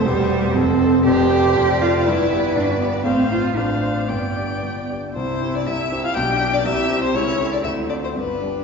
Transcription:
0.00 1.03 C5 medium
0.05 0.29 E1 medium
0.05 0.29 E2 medium
0.05 0.55 G3 loud
0.05 0.57 G4 medium
0.30 0.52 C4 medium
0.30 0.52 G4 medium
0.30 0.53 C5 medium
0.54 0.80 F1 medium
0.54 0.80 F2 medium
0.54 1.05 C4 loud
0.54 1.06 A4 medium
0.81 1.04 C4 medium
0.81 1.04 A4 medium
0.81 1.04 C5 medium
1.06 1.31 F1 medium
1.06 1.31 F2 medium
1.06 1.83 G4 loud
1.06 2.08 C5 medium
1.06 3.01 D5 medium
1.32 1.54 C4 medium
1.32 1.54 A4 medium
1.32 1.54 D5 medium
1.56 1.80 F1 medium
1.56 1.80 F2 medium
1.81 2.03 C4 medium
1.81 2.08 F4 loud
1.81 2.04 A4 medium
1.81 2.04 D5 medium
2.06 2.31 G1 medium
2.06 2.31 G2 medium
2.06 2.57 E4 loud
2.06 3.04 B4 medium
2.32 2.54 B3 medium
2.32 2.54 G4 medium
2.32 2.54 D5 medium
2.56 2.80 G1 medium
2.56 2.80 G2 medium
2.56 2.80 D4 medium
2.80 3.02 B3 medium
2.80 3.09 B3 medium
2.80 3.03 G4 medium
2.80 3.03 D5 medium
3.05 3.30 A1 medium
3.05 3.29 A2 medium
3.05 3.34 C4 medium
3.05 3.52 C5 medium
3.05 3.52 F5 medium
3.31 3.54 C4 soft
3.31 3.54 F4 soft
3.31 3.59 F4 medium
3.31 3.54 F5 soft
3.56 3.81 A1 medium
3.56 3.82 A2 medium
3.56 4.09 D4 medium
3.56 4.09 C5 medium
3.56 4.11 F5 medium
3.83 4.06 C4 soft
3.83 4.06 F4 soft
3.83 4.07 D5 soft
4.08 4.35 G1 soft
4.08 4.35 G2 soft
4.08 4.87 B3 medium
4.08 4.93 D5 medium
4.08 4.94 G5 soft
4.36 4.60 D4 soft
4.36 4.60 G4 soft
4.36 4.60 D5 soft
4.62 4.88 G1 soft
4.62 4.88 G2 soft
4.89 5.12 D4 soft
4.89 5.12 G4 soft
4.89 5.13 D5 soft
5.13 5.40 C2 soft
5.13 5.40 C3 soft
5.13 5.55 C4 medium
5.13 6.17 E4 medium
5.13 5.56 C5 medium
5.41 5.64 E4 soft
5.41 5.64 G4 soft
5.41 5.64 C5 soft
5.54 5.69 D4 medium
5.54 5.68 D5 medium
5.67 5.90 C2 soft
5.67 5.90 C3 medium
5.67 6.03 E4 medium
5.67 6.03 E5 medium
5.92 6.13 E4 soft
5.92 6.13 G4 soft
5.92 6.14 C5 medium
6.04 6.09 F4 medium
6.04 6.16 F5 medium
6.15 6.40 B1 medium
6.15 6.39 B2 medium
6.15 6.64 D4 medium
6.15 6.52 G4 medium
6.15 6.55 G5 medium
6.40 6.62 D4 soft
6.40 6.63 G4 soft
6.40 6.63 D5 medium
6.52 6.57 D4 medium
6.52 6.67 D5 medium
6.65 6.89 C2 medium
6.65 6.89 C3 medium
6.65 7.04 E4 medium
6.65 7.13 G4 medium
6.65 7.02 E5 medium
6.90 7.12 E4 soft
6.90 7.12 G4 medium
6.90 7.12 C5 medium
7.02 7.15 C4 medium
7.02 7.17 C5 medium
7.14 7.38 C#2 medium
7.14 7.38 C#3 medium
7.14 7.52 C#4 medium
7.14 7.64 E4 medium
7.14 7.52 C#5 medium
7.39 7.62 E4 soft
7.39 7.62 G4 soft
7.39 7.62 A4 soft
7.51 7.63 D4 medium
7.51 7.58 D5 medium
7.63 7.88 D2 medium
7.63 7.89 D3 soft
7.63 8.18 C4 medium
7.63 7.91 E4 medium
7.63 7.72 E5 medium
7.89 8.13 C4 soft
7.89 8.04 D4 medium
7.89 8.13 F4 soft
7.89 8.13 A4 soft
7.89 7.94 D5 medium
8.02 8.17 C4 soft
8.02 8.09 C5 medium
8.15 8.41 G1 soft
8.15 8.41 G2 soft
8.15 8.64 B3 soft
8.15 8.64 D4 soft
8.15 8.64 B4 soft
8.42 8.64 G3 soft
8.42 8.64 D4 soft
8.42 8.64 G4 soft

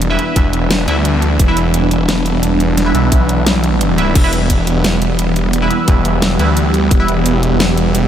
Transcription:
0.00 0.17 E1 medium
0.00 8.08 E3 medium
0.00 8.08 G3 medium
0.00 8.08 B3 medium
0.00 4.13 D4 medium
0.00 closed hi-hat medium
0.10 0.86 E4 medium
0.10 0.86 B4 medium
0.10 0.86 E5 loud
0.19 closed hi-hat medium
0.36 0.86 E1 loud
0.36 kick loud
0.36 closed hi-hat medium
0.53 closed hi-hat medium
0.71 snare loud
0.71 closed hi-hat medium
0.88 1.38 D2 loud
0.88 0.96 E4 medium
0.88 0.96 B4 medium
0.88 0.96 E5 loud
0.88 closed hi-hat medium
1.05 closed hi-hat medium
1.22 closed hi-hat medium
1.39 1.55 E1 loud
1.39 kick loud
1.39 closed hi-hat medium
1.48 1.56 E4 medium
1.48 1.56 B4 medium
1.48 1.56 E5 loud
1.57 2.42 E1 medium
1.57 closed hi-hat medium
1.74 closed hi-hat loud
1.91 closed hi-hat medium
2.09 snare loud
2.09 closed hi-hat medium
2.26 closed hi-hat medium
2.43 2.93 E1 medium
2.43 closed hi-hat medium
2.60 closed hi-hat medium
2.77 snare soft
2.77 closed hi-hat loud
2.86 3.62 E4 loud
2.86 3.62 B4 medium
2.86 3.62 E5 loud
2.95 4.14 B1 medium
2.95 closed hi-hat medium
3.12 kick loud
3.12 closed hi-hat loud
3.29 closed hi-hat medium
3.46 snare loud
3.46 closed hi-hat loud
3.64 closed hi-hat medium
3.81 closed hi-hat loud
3.98 4.11 E4 loud
3.98 4.11 B4 medium
3.98 4.11 E5 loud
3.98 closed hi-hat medium
4.15 4.31 E1 loud
4.15 8.08 G4 medium
4.15 kick loud
4.15 closed hi-hat loud
4.15 crash medium
4.24 4.32 E4 medium
4.24 4.32 B4 medium
4.24 4.32 E5 loud
4.33 5.17 E1 medium
4.33 closed hi-hat medium
4.50 kick medium
4.50 closed hi-hat loud
4.67 closed hi-hat medium
4.84 snare loud
4.84 closed hi-hat loud
5.02 closed hi-hat medium
5.19 5.69 E1 loud
5.19 closed hi-hat medium
5.36 closed hi-hat medium
5.53 closed hi-hat medium
5.62 6.38 E4 medium
5.62 6.38 B4 medium
5.62 6.38 E5 loud
5.71 closed hi-hat medium
5.88 6.38 E1 loud
5.88 kick loud
5.88 closed hi-hat loud
6.05 closed hi-hat medium
6.22 snare loud
6.22 closed hi-hat medium
6.39 6.90 D2 loud
6.39 6.48 E4 medium
6.39 6.48 B4 medium
6.39 6.48 E5 loud
6.39 closed hi-hat medium
6.57 closed hi-hat medium
6.74 closed hi-hat medium
6.91 7.07 E1 medium
6.91 kick loud
6.91 closed hi-hat medium
7.00 7.08 E4 medium
7.00 7.08 B4 medium
7.00 7.08 E5 loud
7.08 7.93 E1 medium
7.08 closed hi-hat medium
7.26 closed hi-hat medium
7.43 closed hi-hat medium
7.60 snare loud
7.60 closed hi-hat medium
7.77 closed hi-hat medium
7.95 8.08 E1 loud
7.95 closed hi-hat medium

